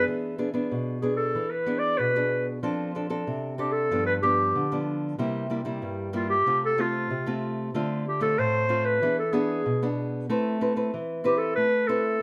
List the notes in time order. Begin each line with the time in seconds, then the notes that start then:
Already playing: B3 D4 G#4
0.08 E3
0.38 B3 D4 G#4
0.54 B3 D4 G#4
0.71 B2
1.00 B3 D4 G#4
1.16 A4
1.35 E3
1.50 B4
1.66 B3 D4 G#4
1.78 D5
1.98 B2 B4
2.16 B3 D4 G#4
2.63 F3 C4 D4 A4
2.95 C4 D4 A4
3.10 C4 D4 A4
3.27 C3
3.58 C4 D4 G4 A4
3.72 A4
3.91 G2 F3 B3 D4
4.06 B4
4.22 F3 B3 D4 G4
4.55 D3
4.72 F3 B3 D4
5.18 C3 G3 A#3 E4
5.50 G3 A#3 E4
5.65 G3 A#3 E4
5.82 G2
6.13 G3 A#3 E4 F4
6.29 G4
6.46 C3 A3 C4 F4
6.65 A4
6.78 A3 C4 F4
7.10 C3
7.26 A3 C4 F4
7.74 D3 A3 C4 F4
8.07 G4
8.21 A3 C4 F4 A4
8.38 A2 C5
8.69 A3 C4 F4
8.85 B4
9.02 E3 B3 D4 G#4
9.18 A4
9.32 B3 D4 G#4
9.66 B2
9.83 B3 D4 G#4
10.30 A3 C4 E4 B4
10.61 C4 E4 B4
10.76 C4 E4 B4
10.94 E3
11.24 C4 E4 G4 B4
11.37 A4
11.55 A3 B4
11.87 C4 E4 A4 B4